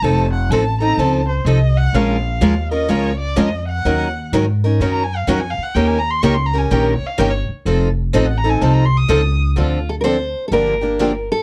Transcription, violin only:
X:1
M:4/4
L:1/16
Q:"Swing" 1/4=126
K:Fphr
V:1 name="Violin"
=a2 g2 a2 b2 a2 c2 e2 g2 | f6 e2 d2 =d2 e2 g2- | g4 z4 z b a f g a f g | =g a b c' d' c' b a g B d f g d z2 |
z4 e g b a =a b c' e'4 z | [K:Dm] z16 |]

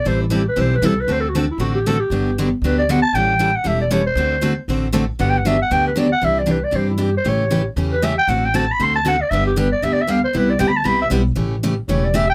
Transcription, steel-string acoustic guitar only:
X:1
M:4/4
L:1/8
Q:"Swing" 1/4=233
K:G
V:1 name="Steel-string acoustic guitar"
[E,G,CEA] z [E,G,CEA] z [E,G,CEA] z [E,G,CEA] z | [D,A,CFA] z [D,A,CFA] z [D,A,CFA] z [D,A,CFA] z | [D,F,B,DG] z [D,F,B,DG] z [D,F,B,DG] z [D,F,B,DG] z | [E,G,^CEA] z [E,G,CEA] z [E,G,CEA] z [E,G,CEA] z |
[D,A,CFA] z [D,A,CFA] z [D,A,CFA] z [D,A,CFA] z | [D,F,B,DG] z [D,F,B,DG] z [D,F,B,DG] z [D,F,B,DG] z | [K:C] [C,E,DG] z [C,E,DG] z [C,E,DG] z [C,E,DG] z | [^C,E,A,^CG] z [C,E,A,CG] z [C,E,A,CG] z [C,E,A,CG] z |
[D,A,C^FA] z [D,A,CFA] z [D,A,CFA] z [D,A,CFA] z | [D,G,B,DG] z [D,G,B,DG] z [D,G,B,DG] z [D,G,B,DG] z | [C,G,B,EG] z [C,G,B,EG] z [C,G,B,EG] z [C,G,B,EG] z | [^C,E,A,^CG] z [C,E,A,CG] z [C,E,A,CG] z [C,E,A,CG] z |]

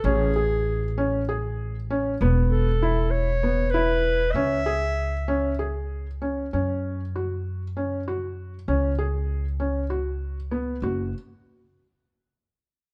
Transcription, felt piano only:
X:1
M:7/8
L:1/8
Q:1/4=98
K:F#m
V:1 name="Felt piano"
C G2 C G2 C | B,2 E2 B, E2 | C G2 C G2 C | C2 F2 C F2 |
C G2 C F2 B, | F z6 |]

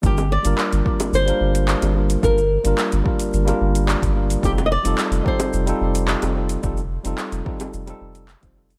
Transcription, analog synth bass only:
X:1
M:4/4
L:1/16
Q:1/4=109
K:Gm
V:1 name="Analog synth bass" clef=bass
G,,,2 z G,,, z G,,, z2 G,,, z G,,,2 z G,,,2 z | G,,,2 z G,,, z G,,, z2 G,,, z G,,,2 z G,,,2 z | F,,,2 z F,,, z F,,, z2 F,,, z F,,,2 z F,,,2 z | F,,,2 z F,,, z F,,, z2 F,,, z F,,,2 z F,,,2 z |]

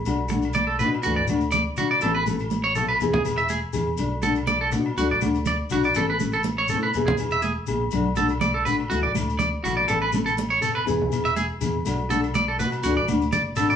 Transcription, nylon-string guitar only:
X:1
M:4/4
L:1/8
Q:1/4=122
K:A
V:1 name="Nylon-string guitar"
[A,DF] [DF] z [DF] [E,A,DF] [A,DF] z [A,D] | [E,B,CA] [B,CA] z [B,A] [E,B,EG] [B,E] z [B,EG] | [A,D] [DF] z [DF] [A,D] [A,DF] z [A,DF] | [E,B,CA] [CA] z [B,CA] [E,B,EG] [EG] z [B,EG] |
[F,A,DF] [A,DF] z [A,DF] [E,A,EF] [A,E] z [A,EF] | [E,B,CA] [B,CA] z [B,A] [E,B,EG] [B,EG] z [B,EG] | [A,DF] [DF] z F [E,A,D] [A,DF] z [A,DF] |]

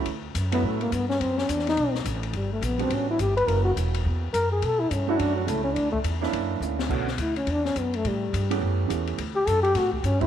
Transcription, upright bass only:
X:1
M:4/4
L:1/8
Q:"Swing" 1/4=210
K:Bm
V:1 name="Upright bass" clef=bass
D,,2 F,,2 A,,2 G,,2 | F,,2 E,,2 B,,,2 A,,,2 | G,,,2 ^A,,,2 =A,,,2 G,,,2 | F,,,2 E,,,2 E,,2 F,,2 |
B,,2 G,,2 F,,2 C,,2 | D,,2 E,,2 F,,2 D,,2 | B,,,2 D,,2 E,,2 F,,2 | A,,2 G,,2 F,,2 E,,2 |
D,,2 F,,2 A,,2 G,,2 |]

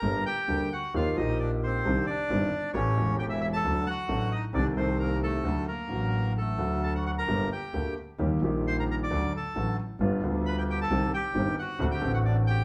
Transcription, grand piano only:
X:1
M:4/4
L:1/8
Q:1/4=133
K:Gm
V:1 name="Grand piano" clef=bass
[G,,,G,,G,B,DA] z [D,,D,G,B,DA] z [E,,E,F,B,EG] [B,,,B,,F,B,EG]3 | [C,,C,E,CDG] z [G,,,G,,E,CDG] z [A,,,A,,=E,A,^CG] [=E,,,=E,,E,A,CG]3 | [D,,D,^F,A,DA] z [A,,,A,,F,A,DA] z [C,,C,E,A,CA] [C,,C,E,A,CA]3 | [D,,D,^F,A,^F] z [A,,,D,F,F]3 [D,,D,F,A,F]3 |
[G,,,G,,D,A,B,G] z [D,,D,A,B,G] z [E,,E,G,B,G] [B,,,B,,E,G,B,G]3 | [D,,D,^F,A,^F] z [A,,,A,,D,F,A,F] z [G,,,G,,D,G,=B,=F] [D,,D,G,B,F]3 | [C,,C,E,G,CG] z [G,,,G,,E,G,CG] z [D,,D,A,C^F] [A,,,A,,D,A,CF]3 |]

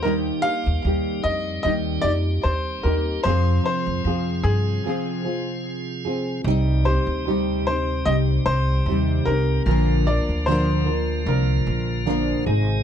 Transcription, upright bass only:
X:1
M:4/4
L:1/16
Q:"Swing 16ths" 1/4=75
K:Cm
V:1 name="Upright bass" clef=bass
E,,2 z E,, E,,2 F,,2 E,,2 F,,2 E,,2 E,,2 | F,,2 z F,, F,,2 G,,2 z8 | C,,3 D,,4- D,, C,,2 C,,2 E,,2 C,,2 | B,,,3 D,,4- D,, C,,2 B,,,4 A,,,2 |]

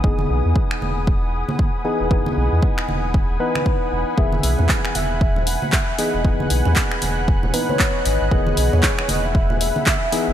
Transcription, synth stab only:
X:1
M:4/4
L:1/8
Q:"Swing 16ths" 1/4=116
K:E
V:1 name="Synth stab"
[E,B,DG]6- [E,B,DG] [E,B,DG] | [E,B,DG]4- [E,B,DG] [E,B,DB]3 | [D,E,B,G]6- [D,E,B,G] [E,B,DG] | [E,B,DG]4- [E,B,DG] [E,B,DB]3 |
[D,E,B,G]6- [D,E,B,G] [E,B,DG] |]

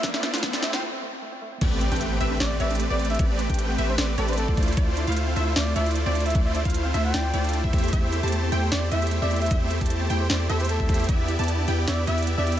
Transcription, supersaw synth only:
X:1
M:4/4
L:1/16
Q:"Swing 16ths" 1/4=152
K:Am
V:1 name="Supersaw synth"
[A,EFcd]3 [A,EFcf] [A,EFc]3 [A,EFcf] z8 | [A,CGBd]3 [A,CGBg]3 [A,CGBe]2 [A,CGBd]2 [A,CGBd]3 [A,CGBd]3 | [A,GBd]3 [A,CGBg]3 [A,CGBe]2 [A,CGBd]2 [A,CGBd]3 [A,EFcd]3 | [A,EFc]3 [A,EFcf]3 [A,EFce]2 [A,EFcd]2 [A,EFcd]3 [A,EFcd]3 |
[A,EFcd]3 [A,EFcf]3 [A,EFce]2 [A,EFc]2 [A,EFcd]3 [A,EGce]3 | [A,EGce]3 [A,EGca]3 [A,EGcg]2 [A,EGcd]2 [A,EGce]3 [A,EGce]3 | [A,EGce]3 [A,EGca]3 [A,EGcg]2 [A,EGcd]2 [A,EGce]3 [A,EGce]3 | [B,EGde]3 [B,EGda]3 [B,EGdg]2 [B,EGde]2 [B,EGde]3 [B,EGde]3 |]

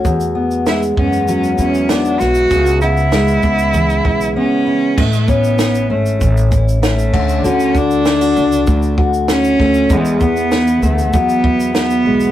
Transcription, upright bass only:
X:1
M:4/4
L:1/8
Q:1/4=98
K:A
V:1 name="Upright bass" clef=bass
E,,3 F,,2 E,,2 B,,, | C,,3 C,,2 B,,, z2 | A,,,3 G,,, A,,,3 D,, | D,,3 C,, D,,3 D,, |
E,,3 D,, E,,3 B,,, |]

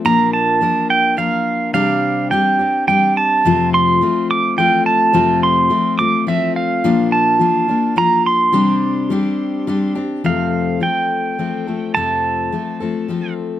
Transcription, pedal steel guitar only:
X:1
M:3/4
L:1/8
Q:1/4=106
K:F
V:1 name="Pedal steel guitar"
b a2 g f2 | f2 g2 g a- | a c'2 d' g a- | a c'2 d' e f- |
f a3 b c'- | c'4- c' z | f2 g4 | a4- a z |]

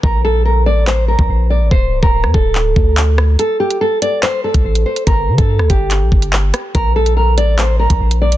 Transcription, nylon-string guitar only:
X:1
M:4/4
L:1/16
Q:1/4=143
K:Bblyd
V:1 name="Nylon-string guitar"
B2 A2 B2 d2 c2 B4 d2 | c3 B3 A8- A2 | A2 G2 A2 d2 c2 A4 c2 | B3 A3 G8- G2 |
B2 A2 B2 d2 c2 B4 d2 |]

